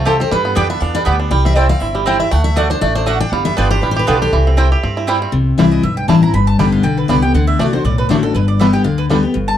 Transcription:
Already playing: upright bass C2, five-string banjo A3 C4
0.05 mandolin C4 F4 C5 A5, five-string banjo G4, steel-string acoustic guitar A4
0.20 five-string banjo C4, steel-string acoustic guitar C5
0.31 upright bass G2, five-string banjo G3, steel-string acoustic guitar B4
0.45 five-string banjo B3
0.55 upright bass F2, mandolin B3 G4 D5 G5, five-string banjo D4, steel-string acoustic guitar G5
0.70 five-string banjo B3, steel-string acoustic guitar E5
0.80 upright bass E2, five-string banjo D4, steel-string acoustic guitar F5
0.95 five-string banjo G3, steel-string acoustic guitar D5
1.05 upright bass D2, mandolin B3 G4 D5 G5, five-string banjo B3
1.20 five-string banjo D4
1.31 upright bass C2, five-string banjo G3, steel-string acoustic guitar G5
1.45 five-string banjo C4, steel-string acoustic guitar E5
1.55 mandolin C4 E4 C5 G5, five-string banjo E4, steel-string acoustic guitar D5
1.69 five-string banjo C4, steel-string acoustic guitar F5
1.80 upright bass G1, five-string banjo E4, steel-string acoustic guitar E5
1.95 five-string banjo G3, steel-string acoustic guitar G4
2.06 mandolin C4 E4 C5 G5, five-string banjo C4, steel-string acoustic guitar C5
2.20 five-string banjo E4, steel-string acoustic guitar E5
2.31 upright bass D2, five-string banjo A3, steel-string acoustic guitar F#5
2.44 steel-string acoustic guitar E5
2.56 mandolin A3 F#4 D5 F#5, five-string banjo D4, steel-string acoustic guitar D5
2.70 five-string banjo D4, steel-string acoustic guitar C5
2.81 upright bass A1, five-string banjo A3, steel-string acoustic guitar D5
2.95 five-string banjo D4, steel-string acoustic guitar C5
3.06 mandolin A3 F#4 D5 F#5, five-string banjo D4, steel-string acoustic guitar E5
3.20 five-string banjo D4, steel-string acoustic guitar G5
3.32 upright bass G1, five-string banjo G3, steel-string acoustic guitar F5
3.45 five-string banjo B3, steel-string acoustic guitar E5
3.57 upright bass G1, mandolin B3 F4 B4 G5, five-string banjo D4, steel-string acoustic guitar D5
3.70 five-string banjo G4, steel-string acoustic guitar C5
3.82 upright bass A1, five-string banjo G3, steel-string acoustic guitar B4
3.91 steel-string acoustic guitar C5
3.96 five-string banjo G4, steel-string acoustic guitar B4
4.07 upright bass B1, mandolin B3 F4 B4 G5, five-string banjo D4, steel-string acoustic guitar A4
4.22 five-string banjo G4, steel-string acoustic guitar C5
4.33 upright bass C2, five-string banjo E3
4.47 five-string banjo C4
4.57 mandolin C4 E4 C5 G5, five-string banjo E4
4.72 five-string banjo G4
4.83 upright bass G2, five-string banjo C4
4.97 five-string banjo E4
5.07 five-string banjo G3, mandolin C4 E4 C5 G5
5.22 five-string banjo C4
5.32 upright bass C2, steel-string acoustic guitar C3
5.58 upright bass C2, steel-string acoustic guitar E3 G3 C4 E4, five-string banjo G3 C4 E4
5.71 mandolin D#5
5.83 upright bass B1, steel-string acoustic guitar G2, mandolin E5
5.97 mandolin G5
6.08 upright bass A1, steel-string acoustic guitar E3 G3 C4 E4, five-string banjo G3 C4 E4, mandolin A5
6.22 steel-string acoustic guitar C4 E4, mandolin A#5
6.33 upright bass G1, steel-string acoustic guitar G2, mandolin B5
6.47 mandolin A5
6.58 upright bass A1, steel-string acoustic guitar D3 G3 B3 G4, five-string banjo G3 B3 D4, mandolin G5
6.72 mandolin F5
6.83 upright bass B1, steel-string acoustic guitar D3, mandolin G5
6.98 mandolin B4
7.08 upright bass C2, steel-string acoustic guitar D3 G3 B3 G4, five-string banjo G3 B3 D4, mandolin D5
7.22 steel-string acoustic guitar B3 G4, mandolin G5
7.34 upright bass D2, steel-string acoustic guitar D3, mandolin F#5
7.47 mandolin E5
7.59 upright bass C2, steel-string acoustic guitar D3 A3 D4 F#4, five-string banjo A3 D4, mandolin D5
7.73 steel-string acoustic guitar D4 F#4, mandolin C5
7.84 upright bass B1, steel-string acoustic guitar A2, mandolin D5
7.98 mandolin B4
8.09 upright bass A1, steel-string acoustic guitar D3 A3 D4 F#4, five-string banjo A3 D4, mandolin C5
8.23 steel-string acoustic guitar D4 F#4, mandolin A4
8.35 upright bass G1, steel-string acoustic guitar G2, mandolin B4
8.48 mandolin D5
8.60 steel-string acoustic guitar D3 G3 B3 G4, five-string banjo G3 B3 D4, mandolin E5
8.73 steel-string acoustic guitar B3 G4, mandolin G5
8.84 upright bass D2, steel-string acoustic guitar D3, mandolin F5
8.98 mandolin B4
9.10 steel-string acoustic guitar D3 G3 B3 G4, five-string banjo G3 B3 D4
9.23 steel-string acoustic guitar B3 G4
9.34 upright bass G1, steel-string acoustic guitar G2
9.48 mandolin A5

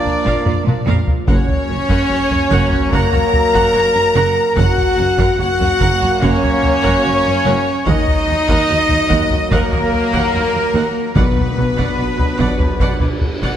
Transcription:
Already playing: trombone section F3 A#3, french horn section D4, violin section D5, flute section D5, trumpet section D5
0.06 taiko low
0.25 cello section A#2, viola section A#4 F5, taiko
0.45 double bass section A#1, cello section A#2, viola section F4 D5, taiko low-mid
0.65 cello section A#2, viola section D4 A#4, taiko mid
0.86 double bass section A#1, cello section A#2, viola section A#4 F5, taiko low-mid
1.08 taiko low
1.27 double bass section F#1, cello section F#2, trombone section F#3 A#3, french horn section C#4, viola section A#4 F#5, trumpet section C#5, violin section C#5, flute section C#5, taiko
1.49 taiko low
1.68 double bass section F#1, cello section F#2, viola section C#4 A#4
1.89 cello section F#2, viola section A#4 F#5, taiko
2.09 double bass section F#1, cello section F#2, viola section F#4 C#5
2.30 cello section F#2, viola section C#4 A#4, taiko low
2.50 double bass section F#1, cello section F#2, viola section A#4 F#5, taiko
2.71 cello section F#2, viola section F#4 C#5, taiko low
2.91 double bass section F#1, cello section F#2, french horn section A#4, viola section A#4 F#5, violin section A#5, trumpet section A#5, flute section A#5, taiko
3.13 cello section F#2, viola section F#4 C#5, taiko low
3.33 taiko low
3.53 cello section F#2, viola section A#4 F#5, taiko
3.74 double bass section F#1, cello section F#2, viola section F#4 C#5
3.94 cello section F#2, viola section C#4 A#4
4.15 double bass section F#1, cello section F#2, viola section A#4 F#5
4.56 double bass section F#1, cello section F#2, trombone section F#3 A#3, french horn section F#4, viola section A#4 F#5, violin section F#5, flute section F#5, trumpet section F#5, taiko
4.78 taiko low
4.98 double bass section F#1, cello section F#2, viola section C#4 A#4
5.18 cello section F#2, viola section A#4 F#5, taiko
5.38 double bass section F#1, cello section F#2, viola section F#4 C#5, french horn section F#4, trumpet section F#5, violin section F#5, flute section F#5
5.60 cello section F#2, viola section C#4 A#4, taiko low
5.80 double bass section F#1, cello section F#2, viola section A#4 F#5, taiko
6.01 cello section F#2, viola section F#4 C#5, taiko low
6.21 double bass section F#1, cello section F#2, french horn section C#4, viola section A#4 F#5, trumpet section C#5, violin section C#5, flute section C#5, taiko
6.42 cello section F#2, viola section F#4 C#5, taiko low
6.64 taiko low
6.82 cello section F#2, viola section A#4 F#5, taiko
7.03 double bass section F#1, cello section F#2, viola section F#4 C#5
7.24 cello section F#2, viola section C#4 A#4
7.44 double bass section F#1, cello section F#2, viola section A#4 F#5
7.86 cello section D#2, double bass section D#2, trombone section F#3 A#3, french horn section D#4, viola section A#4 F#5, trumpet section D#5, violin section D#5, flute section D#5, taiko
8.08 taiko low
8.27 cello section D#2, double bass section D#2, viola section D#4 A#4
8.48 cello section D#2, viola section A#4 F#5, taiko
8.69 double bass section D#2, cello section D#2, viola section F#4 D#5
8.88 cello section D#2, viola section D#4 A#4, taiko low
9.09 double bass section D#2, cello section D#2, viola section A#4 F#5, taiko
9.31 cello section D#2, viola section F#4 D#5, taiko low
9.51 double bass section D#2, cello section D#2, french horn section A#3, trumpet section A#4, viola section A#4 F#5, violin section A#4, flute section A#4, taiko
9.72 cello section D#2, viola section F#4 D#5, taiko low
9.93 taiko low
10.13 cello section D#2, viola section A#4 F#5, taiko
10.33 double bass section D#2, cello section D#2, viola section F#4 D#5
10.54 cello section D#2, viola section D#4 A#4
10.74 double bass section D#2, cello section D#2, viola section A#4 F#5
11.15 double bass section B1, timpani B2, cello section B2, trombone section F#3 D4, french horn section B3, trumpet section B4, violin section B4, flute section B4, viola section D5 F#5, taiko, cymbal swell
11.37 taiko low
11.56 double bass section B1, cello section B2, viola section F#4 B4
11.77 cello section B2, viola section D5 F#5, taiko
11.97 double bass section B1, cello section B2, viola section B4 D5
12.18 cello section B2, viola section F#4 B4, taiko low
12.38 double bass section B1, cello section B2, viola section D5 F#5, taiko
12.59 cello section B2, viola section B4 D5, taiko low
12.79 double bass section B1, cello section B2, viola section D5 F#5, taiko
12.99 cello section B2, viola section B4 D5, taiko low
13.21 taiko low
13.41 cello section B2, viola section D5 F#5, taiko

